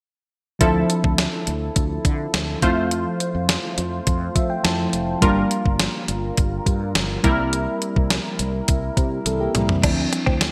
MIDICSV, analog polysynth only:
0, 0, Header, 1, 2, 480
1, 0, Start_track
1, 0, Tempo, 576923
1, 506, Time_signature, 4, 2, 24, 8
1, 8751, End_track
2, 0, Start_track
2, 0, Title_t, "Analog polysynth"
2, 0, Program_c, 0, 90
2, 505, Note_on_c, 0, 53, 70
2, 505, Note_on_c, 0, 64, 66
2, 505, Note_on_c, 0, 69, 74
2, 2152, Note_off_c, 0, 53, 0
2, 2152, Note_off_c, 0, 64, 0
2, 2152, Note_off_c, 0, 69, 0
2, 2185, Note_on_c, 0, 72, 78
2, 2186, Note_on_c, 0, 65, 73
2, 2187, Note_on_c, 0, 57, 71
2, 4312, Note_off_c, 0, 65, 0
2, 4312, Note_off_c, 0, 72, 0
2, 4313, Note_off_c, 0, 57, 0
2, 4343, Note_on_c, 0, 70, 74
2, 4344, Note_on_c, 0, 55, 64
2, 4344, Note_on_c, 0, 65, 69
2, 5991, Note_off_c, 0, 65, 0
2, 5991, Note_off_c, 0, 70, 0
2, 5992, Note_off_c, 0, 55, 0
2, 6023, Note_on_c, 0, 64, 72
2, 6023, Note_on_c, 0, 70, 83
2, 6024, Note_on_c, 0, 55, 70
2, 8151, Note_off_c, 0, 55, 0
2, 8151, Note_off_c, 0, 64, 0
2, 8151, Note_off_c, 0, 70, 0
2, 8751, End_track
0, 0, End_of_file